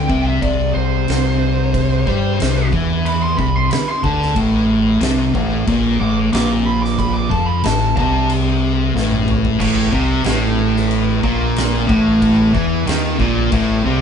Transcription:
Already playing: G5
0.09 C2 C3, kick
0.26 E5
0.41 C2 C3 D5, kick, crash
0.75 C2 C3 C5
1.08 C2 C3, snare, crash
1.74 kick, crash
2.06 G2 G3, kick
2.39 C2 C3, snare, crash
2.73 E2 E3, kick
3.06 B5, crash
3.23 C6
3.38 C2 C3 B5, kick
3.55 C6
3.70 B5, snare, crash
3.88 C6
4.03 D2 D3 A5, kick
4.22 snare
4.36 A1 A2, kick, crash
5.01 C2 C3, snare, crash
5.34 A1 A2, kick
5.67 A#1 A#2, kick, crash
6.00 A1 A2 D6
6.33 A#1 A#2 D6, snare, crash
6.66 B5
6.83 D6, snare
6.99 B5, kick, crash
7.14 D6
7.30 F2 F3 A5, kick
7.46 B5
7.64 A1 A2 A5, snare, crash
7.97 C2 C3 A5, kick
8.29 crash
8.95 A1 A2, snare
9.11 high tom
9.28 mid tom
9.45 floor tom
9.60 A1 A2, kick, crash
9.92 C2 C3, kick
10.24 A1 A2, snare, crash
10.76 snare
10.91 crash
11.23 A#1 A#2, kick
11.56 snare, crash
11.88 A1 A2, kick
12.22 kick, crash
12.54 E2 E3, kick
12.86 D#2 D#3, snare, crash
13.19 A#1 A#2, kick
13.52 A1 A2, kick, crash
13.84 C2 C3

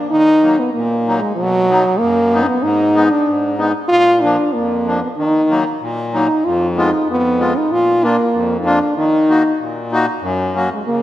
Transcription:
0.10 D#3 D#4
0.43 F#3 A#3 D#4
0.59 B3
0.73 A#2 A#3
1.07 F#3 A#3 D#4
1.20 G#3
1.35 B2 F#3
1.70 F#3 B3 D#4
1.99 F#2 A#3
2.33 F#3 B3 D#4
2.43 D4
2.47 B3
2.62 G#2 D#4
2.94 G#3 B3 D#4
3.10 D4
3.26 G#2
3.58 G#3 B3 D#4
3.88 A#2 F4
4.22 F3 A#3 D4
4.53 F2 A#3
4.86 F3 A#3 D4
5.01 B3
5.17 D#3 D#4
5.50 F#3 A#3 D#4
5.81 A#2
6.14 F#3 A#3 D#4
6.45 F2 F4
6.71 F4
6.76 G#3 B3 D#4 F4
7.06 F2
7.11 B3
7.39 G#3 B3 F4
7.58 D#4
7.70 A#2 F4
8.03 A#3 D4 F4
8.33 F2
8.59 D#4
8.65 A#3 D4 F4
8.97 D#3 D#4
9.29 A#3 D#4 F#4
9.60 A#2
9.92 A#3 D#4 F#4
10.21 F#2
10.55 F#3 A#3 C#4 F#4
10.72 G#3
10.86 C#3 A#3

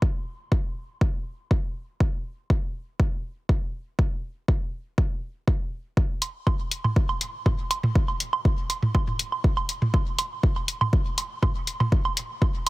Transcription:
0.02 kick
0.52 kick
1.01 kick
1.51 kick
2.00 kick
2.50 kick
3.00 kick
3.49 kick
3.99 kick
4.48 kick
4.98 kick
5.48 kick
5.97 kick
6.22 closed hi-hat, low woodblock
6.47 kick, low woodblock
6.71 closed hi-hat
6.84 mid tom, low woodblock
6.96 kick
7.09 low woodblock
7.21 closed hi-hat
7.46 kick, mid tom, low woodblock
7.71 closed hi-hat, low woodblock
7.83 mid tom
7.95 kick
8.08 low woodblock
8.20 closed hi-hat
8.33 low woodblock
8.45 kick
8.70 closed hi-hat, low woodblock
8.82 mid tom
8.95 kick, low woodblock
9.07 mid tom
9.19 closed hi-hat
9.32 low woodblock
9.44 kick
9.57 low woodblock
9.69 closed hi-hat
9.82 mid tom
9.94 kick, low woodblock
10.19 closed hi-hat, low woodblock
10.43 kick
10.56 low woodblock
10.68 closed hi-hat
10.81 mid tom, low woodblock
10.93 kick
11.18 closed hi-hat, low woodblock
11.43 kick, mid tom, low woodblock
11.67 closed hi-hat
11.80 mid tom, low woodblock
11.92 kick
12.05 low woodblock
12.17 closed hi-hat
12.42 kick, low woodblock

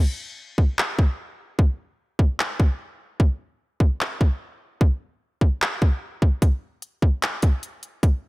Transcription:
0.58 kick
0.79 clap
0.99 kick
1.59 kick
2.19 kick
2.40 clap
2.60 kick
3.20 kick
3.80 kick
4.01 clap
4.21 kick
4.81 kick
5.41 kick
5.62 clap
5.82 kick
6.22 kick
6.42 kick, closed hi-hat
6.82 closed hi-hat
7.02 kick
7.22 clap, closed hi-hat
7.42 kick, closed hi-hat
7.63 closed hi-hat
7.83 closed hi-hat
8.03 kick, closed hi-hat

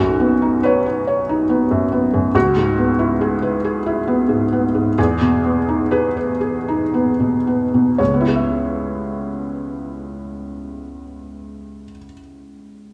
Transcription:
Already playing: B1 F#2 F#4
0.20 B3
0.42 D#4
0.63 B4 C#5
0.86 B4
1.07 C#5
1.29 D#4
1.50 B3
1.71 F#2
1.92 B3
2.14 F#2
2.35 C#2 F#4
2.57 G#2
2.78 B3
2.99 E4
3.21 G#4
3.42 B4
3.64 G#4
3.86 E4
4.07 B3
4.29 G#2
4.53 B3
4.75 G#2
4.98 E2 G#4
5.21 B2
5.44 B3
5.68 D#4
5.91 G#4 B4
6.17 B4
6.41 G#4
6.68 D#4
6.94 B3
7.20 B2
7.47 B3
7.74 B2
7.98 C#2 C#5
8.07 C#3
8.14 B3
8.20 E4
8.28 G#4
8.35 E5

